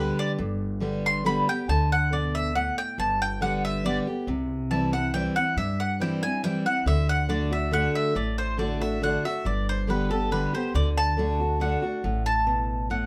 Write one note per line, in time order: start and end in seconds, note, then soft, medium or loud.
0.00 0.36 D3 medium
0.00 0.37 G3 medium
0.00 0.37 B3 medium
0.00 0.37 G4 loud
0.00 0.18 B4 medium
0.19 0.31 D5 loud
0.38 1.39 G1 medium
0.38 1.21 G2 loud
0.80 1.22 D3 medium
0.80 1.23 G3 medium
0.80 1.23 B3 medium
0.80 1.24 G4 medium
1.06 1.25 C6 loud
1.25 1.46 D3 medium
1.25 1.47 G3 medium
1.25 1.47 B3 medium
1.25 1.46 G4 medium
1.25 1.47 B5 medium
1.47 1.69 B3 medium
1.47 1.67 G4 medium
1.47 1.69 G5 medium
1.68 2.68 D2 medium
1.68 2.51 D3 medium
1.68 1.91 A5 medium
1.92 2.12 F#5 loud
2.12 2.53 B2 medium
2.12 2.34 D5 medium
2.35 2.55 E5 loud
2.55 2.96 A2 medium
2.55 2.77 F#5 medium
2.78 2.98 G5 loud
2.98 3.98 G1 medium
2.98 3.80 G2 medium
2.98 3.20 A5 medium
3.22 3.41 G5 loud
3.41 3.82 D3 medium
3.41 3.82 G3 medium
3.41 3.83 B3 medium
3.41 3.83 G4 medium
3.41 3.63 F#5 medium
3.65 3.84 E5 medium
3.84 4.05 D3 medium
3.84 4.06 G3 medium
3.84 4.06 B3 medium
3.84 4.06 G4 medium
3.84 3.99 D5 loud
4.07 4.28 B3 medium
4.07 4.27 G4 medium
4.27 5.27 C2 loud
4.27 5.10 C3 loud
4.71 4.92 E3 medium
4.71 4.93 G3 medium
4.71 4.93 C4 medium
4.71 4.92 E4 medium
4.71 4.92 A5 medium
4.93 5.14 C4 medium
4.93 5.13 E4 medium
4.93 5.13 F#5 medium
5.14 5.35 E3 medium
5.14 5.36 G3 medium
5.14 5.36 C4 loud
5.14 5.35 E4 medium
5.14 5.35 G5 medium
5.36 5.57 C4 soft
5.36 5.56 E4 medium
5.36 5.56 F#5 medium
5.57 6.57 G2 medium
5.57 6.39 G2 medium
5.57 5.79 E5 medium
5.80 6.00 F#5 medium
6.00 6.21 E3 medium
6.00 6.22 G3 loud
6.00 6.22 C4 medium
6.00 6.22 E4 loud
6.00 6.22 G5 medium
6.23 6.44 C4 medium
6.23 6.43 E4 medium
6.23 6.43 G#5 loud
6.43 6.65 E3 medium
6.43 6.65 G3 medium
6.43 6.66 C4 medium
6.43 6.65 E4 loud
6.43 6.65 G5 medium
6.66 6.87 C4 medium
6.66 6.86 E4 medium
6.66 6.86 F#5 medium
6.86 7.86 D2 medium
6.86 7.28 D3 loud
6.86 7.09 E5 medium
7.09 7.29 F#5 loud
7.29 7.51 D3 loud
7.29 7.51 A3 medium
7.29 7.51 D4 medium
7.29 7.49 F#4 loud
7.29 7.51 D5 medium
7.51 7.72 D4 medium
7.51 7.71 F#4 medium
7.51 7.72 E5 medium
7.71 8.13 D3 medium
7.71 8.14 A3 medium
7.71 8.14 D4 medium
7.71 8.14 F#4 loud
7.71 7.95 F#5 loud
7.95 8.15 E5 medium
8.15 9.15 A1 medium
8.15 8.98 A2 medium
8.15 8.38 D5 medium
8.38 8.58 C5 medium
8.57 8.80 D3 medium
8.57 8.80 A3 loud
8.57 8.80 D4 loud
8.57 8.79 F#4 medium
8.57 8.81 D5 medium
8.80 9.02 D4 medium
8.80 9.01 F#4 medium
8.80 9.02 E5 medium
9.02 9.23 D3 medium
9.02 9.24 A3 medium
9.02 9.24 D4 loud
9.02 9.23 F#4 medium
9.02 9.24 F#5 medium
9.25 9.45 D4 soft
9.25 9.44 F#4 medium
9.25 9.45 E5 medium
9.45 10.45 G1 loud
9.45 10.27 G2 medium
9.45 9.67 D5 medium
9.69 9.89 C5 medium
9.87 10.09 D3 medium
9.87 10.10 G3 medium
9.87 10.10 B3 loud
9.87 10.09 G4 medium
9.87 10.10 B4 medium
10.10 10.31 B3 medium
10.10 10.30 G4 medium
10.10 10.31 A4 medium
10.31 10.53 D3 medium
10.31 10.53 G3 medium
10.31 10.54 B3 loud
10.31 10.52 G4 medium
10.31 10.53 B4 medium
10.53 10.75 B3 medium
10.53 10.73 G4 medium
10.53 10.74 C5 medium
10.74 11.74 D2 loud
10.74 11.16 D3 medium
10.74 10.88 D5 medium
10.98 11.57 A5 loud
11.17 11.39 D3 medium
11.17 11.39 A3 medium
11.17 11.40 D4 loud
11.17 11.39 F#4 loud
11.40 11.60 D4 medium
11.40 11.60 F#4 medium
11.60 11.82 D3 medium
11.60 11.82 A3 medium
11.60 11.83 D4 medium
11.60 11.81 F#4 medium
11.60 12.22 F#5 medium
11.82 12.04 D4 medium
11.82 12.03 F#4 medium
12.04 13.04 A1 medium
12.04 12.86 A2 loud
12.26 12.86 A5 loud
12.47 12.88 B2 medium
12.90 13.06 A2 medium
12.90 13.06 F#5 medium